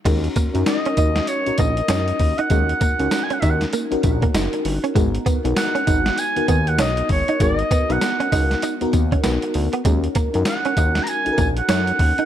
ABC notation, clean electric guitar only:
X:1
M:4/4
L:1/16
Q:"Swing 16ths" 1/4=98
K:D#phr
V:1 name="Clean electric guitar"
G, z A, z2 C D z3 A, z C z2 D | G, z A, z2 C D z A, z2 A, D z2 C | G, z B, z2 C D z3 B, z C z2 D | G, z B, z2 C D z D z2 C B, z2 B, |
G, z A, z2 C D z3 A, z C z2 D |]